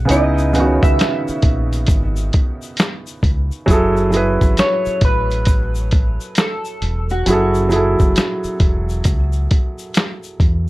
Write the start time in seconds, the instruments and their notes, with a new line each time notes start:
0.05 felt piano C#3 B3, closed hi-hat
0.10 fingered electric bass C#2, felt piano D#4 E4, clean electric guitar D#5, shaker
0.38 shaker
0.53 felt piano C#3 B3, closed hi-hat, shaker
0.58 felt piano D#3 F#4
0.67 clean electric guitar C#5
0.83 fingered electric bass C#2, clean electric guitar E5, kick, closed hi-hat, shaker
0.99 snare, closed hi-hat, shaker
1.28 muted fingered electric bass stroke, shaker
1.42 fingered electric bass A#1, kick, closed hi-hat
1.73 closed hi-hat, shaker
1.87 fingered electric bass G#1, kick, closed hi-hat, shaker
2.16 shaker
2.33 kick, closed hi-hat
2.62 shaker
2.77 snare, closed hi-hat, shaker
3.07 shaker
3.23 fingered electric bass C#2, kick, closed hi-hat
3.52 shaker
3.66 fingered electric bass F#1, felt piano F#3 E4, kick, closed hi-hat, shaker
3.70 felt piano G#4 A4
3.97 shaker
4.10 felt piano F#3 E4, closed hi-hat, shaker
4.15 felt piano G#4 B4
4.41 fingered electric bass G#1, kick, closed hi-hat, shaker
4.57 clean electric guitar C#5, snare, closed hi-hat, shaker
4.85 muted fingered electric bass stroke, shaker
5.01 fingered electric bass A1, clean electric guitar B4, kick, closed hi-hat
5.31 closed hi-hat, shaker
5.45 kick, closed hi-hat, shaker
5.75 shaker
5.91 kick, closed hi-hat
6.21 shaker
6.35 clean electric guitar A4, snare, closed hi-hat, shaker
6.65 shaker
6.82 fingered electric bass E1, closed hi-hat
7.10 clean electric guitar F#4, shaker
7.26 fingered electric bass F#1, felt piano F#3 E4, closed hi-hat, shaker
7.30 felt piano G#4 A4
7.54 shaker
7.69 felt piano F#3 E4, closed hi-hat, shaker
7.73 felt piano G#4 A4
7.99 fingered electric bass F#1, kick, shaker
8.16 snare, closed hi-hat, shaker
8.44 muted fingered electric bass stroke, shaker
8.60 fingered electric bass E1, kick, closed hi-hat
8.89 shaker
9.04 fingered electric bass C#2, kick, closed hi-hat, shaker
9.32 shaker
9.51 kick, closed hi-hat
9.79 shaker
9.94 snare, closed hi-hat, shaker
10.23 shaker
10.40 fingered electric bass E2, kick, closed hi-hat